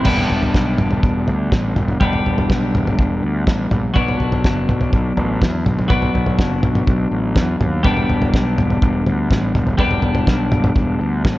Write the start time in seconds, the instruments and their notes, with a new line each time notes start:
0.04 fingered electric bass E1, clean electric guitar G3 B3 D4, kick, floor tom, crash
0.17 floor tom
0.29 fingered electric bass E1, floor tom
0.42 floor tom
0.54 fingered electric bass B1, kick, snare
0.78 fingered electric bass E1, floor tom, mid tom
0.91 floor tom
1.03 fingered electric bass E1, kick, floor tom
1.27 fingered electric bass D2, floor tom
1.52 fingered electric bass A1, kick, snare
1.76 fingered electric bass E1, floor tom, mid tom
1.88 floor tom
2.00 fingered electric bass E1, clean electric guitar G3 B3 D4, kick, floor tom
2.13 floor tom
2.25 fingered electric bass E1, floor tom
2.38 floor tom
2.50 fingered electric bass B1, kick, snare
2.74 fingered electric bass E1, floor tom, mid tom
2.87 floor tom, mid tom
2.99 fingered electric bass E1, kick, floor tom
3.23 fingered electric bass D2
3.47 fingered electric bass A1, kick, snare
3.71 fingered electric bass A#1, floor tom, mid tom
3.94 fingered electric bass B1, clean electric guitar F#3 B3 D4, kick, floor tom
4.08 floor tom
4.20 fingered electric bass B1, floor tom
4.32 floor tom
4.44 fingered electric bass F#1, kick, snare
4.69 fingered electric bass B1, floor tom, mid tom
4.81 floor tom
4.93 fingered electric bass B1, kick, floor tom
5.17 fingered electric bass A1, floor tom
5.42 fingered electric bass E2, kick, snare
5.66 fingered electric bass B1, floor tom, mid tom
5.79 floor tom
5.88 fingered electric bass B1, clean electric guitar F#3 B3 D4, kick, floor tom
6.02 floor tom
6.13 fingered electric bass B1, floor tom
6.27 floor tom
6.39 fingered electric bass F#1, kick, snare
6.62 fingered electric bass B1, floor tom, mid tom
6.75 floor tom, mid tom
6.87 fingered electric bass B1, kick, floor tom
7.11 fingered electric bass A1
7.36 fingered electric bass E2, kick, snare
7.60 fingered electric bass D#2, floor tom, mid tom
7.83 fingered electric bass E1, clean electric guitar G3 B3 D4, kick, floor tom
7.97 floor tom
8.09 fingered electric bass E1, floor tom
8.22 floor tom
8.34 fingered electric bass B1, kick, snare
8.58 fingered electric bass E1, floor tom, mid tom
8.70 floor tom
8.82 fingered electric bass E1, kick, floor tom
9.07 fingered electric bass D2, floor tom
9.31 fingered electric bass A1, kick, snare
9.55 fingered electric bass E1, floor tom, mid tom
9.67 floor tom
9.78 fingered electric bass E1, clean electric guitar G3 B3 D4, kick, floor tom
9.91 floor tom
10.03 fingered electric bass E1, floor tom
10.15 floor tom
10.28 fingered electric bass B1, kick, snare
10.51 fingered electric bass E1, floor tom, mid tom
10.64 floor tom, mid tom
10.76 fingered electric bass E1, kick, floor tom
11.01 fingered electric bass D2
11.25 fingered electric bass A1, kick, snare